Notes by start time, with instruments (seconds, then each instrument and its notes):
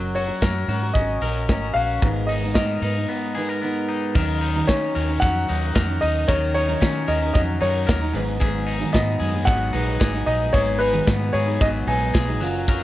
Already playing: fingered electric bass F#1, steel-string acoustic guitar F#3 C#4 F#4 A#4, clean electric guitar F#3
0.15 clean electric guitar F#4, upright piano C#5, open hi-hat
0.27 steel-string acoustic guitar C#4 F#4 A#4
0.42 fingered electric bass F#2, clean electric guitar A#4, kick, snare, closed hi-hat
0.68 fingered electric bass G#2, steel-string acoustic guitar F#3 C#4 F#4 A#4, clean electric guitar F#4, open hi-hat
0.83 steel-string acoustic guitar C#4 F#4 A#4
0.94 fingered electric bass G#1, clean electric guitar C#4, upright piano D#5, kick, closed hi-hat
1.21 fingered electric bass A#1, steel-string acoustic guitar F#3 C#4 F#4 A#4, clean electric guitar A#4, open hi-hat
1.49 fingered electric bass G#1, steel-string acoustic guitar F#3 C#4 F#4 A#4, clean electric guitar C#4, kick, snare, closed hi-hat
1.74 fingered electric bass A#1, clean electric guitar F#4, upright piano F5, open hi-hat
2.02 fingered electric bass G#1, clean electric guitar G#2, steel-string acoustic guitar G#2 D#3 G#3 B3 D#4 A#4, kick, closed hi-hat
2.27 clean electric guitar D#4, upright piano D#5, open hi-hat
2.43 steel-string acoustic guitar G#3 B3 D#4 A#4
2.55 fingered electric bass G#2, clean electric guitar A#4, upright piano D#5, kick, snare, closed hi-hat
2.82 fingered electric bass G#2, steel-string acoustic guitar G#3 B3 D#4 A#4, clean electric guitar D#4, open hi-hat
2.97 steel-string acoustic guitar G#3 B3 D#4 A#4
3.09 clean electric guitar B3
3.35 steel-string acoustic guitar G#3 B3 D#4 A#4, clean electric guitar G#4
3.49 clean electric guitar A#4
3.62 steel-string acoustic guitar G#3 B3 D#4 A#4, clean electric guitar B3
3.89 clean electric guitar D#4
4.15 fingered electric bass D#2, clean electric guitar D#3 A#4, steel-string acoustic guitar F#3 C#4 D#4 A#4, kick, crash
4.41 clean electric guitar D#4, open hi-hat
4.56 steel-string acoustic guitar D#3 F#3 C#4 D#4 A#4
4.67 fingered electric bass D#3, clean electric guitar C#4, upright piano C#5, kick, snare, hi-hat pedal, ride
4.95 fingered electric bass D#2, clean electric guitar A#4, open hi-hat
5.08 steel-string acoustic guitar C#4 D#4 A#4
5.20 fingered electric bass F2, clean electric guitar F#3, upright piano F#5, kick, hi-hat pedal, ride
5.48 fingered electric bass D#2, steel-string acoustic guitar F#3 C#4 D#4 A#4, clean electric guitar D#4, open hi-hat
5.75 fingered electric bass F2, clean electric guitar A#4, kick, snare, hi-hat pedal, ride
5.88 steel-string acoustic guitar C#4 D#4 A#4
6.01 fingered electric bass D#2, clean electric guitar D#4, upright piano D#5, open hi-hat
6.27 fingered electric bass D#2, clean electric guitar D#3 A#4, steel-string acoustic guitar F#3 C#4 D#4 A#4, upright piano C#5, kick, hi-hat pedal, ride
6.54 clean electric guitar D#4, upright piano C#5, open hi-hat
6.68 steel-string acoustic guitar D#3 F#3 C#4 D#4 A#4
6.81 fingered electric bass D#3, clean electric guitar C#4, kick, snare, hi-hat pedal, ride
7.08 fingered electric bass D#2, clean electric guitar A#4, upright piano D#5, open hi-hat
7.21 steel-string acoustic guitar C#4 D#4 A#4
7.33 fingered electric bass F2, clean electric guitar F#3, upright piano D#5, kick, hi-hat pedal, ride
7.60 fingered electric bass F#2, steel-string acoustic guitar F#3 C#4 D#4 A#4, clean electric guitar D#4, upright piano C#5, open hi-hat
7.86 fingered electric bass D#2, clean electric guitar A#4, kick, snare, hi-hat pedal, ride
8.01 steel-string acoustic guitar C#4 D#4 A#4
8.13 fingered electric bass G#1, clean electric guitar G#2, steel-string acoustic guitar G#2 D#3 F#3 B3 D#4 G#4, open hi-hat
8.39 clean electric guitar G#2 G#4, kick, hi-hat pedal, ride
8.66 clean electric guitar D#4, open hi-hat
8.80 steel-string acoustic guitar G#2 D#3 F#3 B3 D#4 G#4
8.93 fingered electric bass G#2, clean electric guitar B3, upright piano D#5, kick, snare, hi-hat pedal, ride
9.20 fingered electric bass F#2, clean electric guitar G#4, open hi-hat
9.34 steel-string acoustic guitar F#3 B3 D#4 G#4
9.45 fingered electric bass G#1, clean electric guitar F#3, upright piano F#5, kick, hi-hat pedal, ride
9.73 fingered electric bass A#1, steel-string acoustic guitar F#3 B3 D#4 G#4, clean electric guitar D#4, open hi-hat
10.00 fingered electric bass G#1, clean electric guitar G#4, kick, snare, hi-hat pedal, ride
10.14 steel-string acoustic guitar F#3 B3 D#4 G#4
10.26 fingered electric bass A#1, clean electric guitar D#4, upright piano D#5, open hi-hat
10.53 fingered electric bass G#1, clean electric guitar G#2 G#4, steel-string acoustic guitar F#3 B3 D#4 G#4, upright piano C#5, kick, hi-hat pedal, ride
10.79 clean electric guitar D#4, upright piano B4, open hi-hat
10.93 steel-string acoustic guitar G#2 D#3 F#3 B3 D#4 G#4
11.07 fingered electric bass G#2, clean electric guitar B3, kick, snare, hi-hat pedal, ride
11.33 fingered electric bass G#2, clean electric guitar G#4, upright piano C#5, open hi-hat
11.46 steel-string acoustic guitar F#3 B3 D#4 G#4
11.61 fingered electric bass G#1, clean electric guitar F#3, upright piano D#5, kick, hi-hat pedal, ride
11.87 fingered electric bass A#1, steel-string acoustic guitar F#3 B3 D#4 G#4, clean electric guitar D#4, upright piano G#5, open hi-hat
12.14 fingered electric bass B1, clean electric guitar G#4, kick, snare, hi-hat pedal, ride
12.27 steel-string acoustic guitar F#3 B3 D#4 G#4
12.40 fingered electric bass F#1, clean electric guitar F#3, steel-string acoustic guitar F#3 C#4 F4 A#4, open hi-hat
12.67 analog synth pad C#3 F#3 A#3 C#4, clean electric guitar F#3 A#4, kick, hi-hat pedal, ride